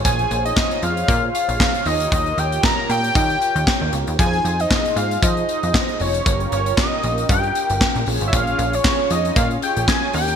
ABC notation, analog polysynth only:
X:1
M:4/4
L:1/8
Q:"Swing 16ths" 1/4=116
K:Bbdor
V:1 name="Analog polysynth"
[FAcd]6- [FAcd] [FGBd]- | [FGBd]8 | [EFABc]8 | [DFGB]6- [DFGB] [DFAd]- |
[DFAd]6- [DFAd] [DFGB] |]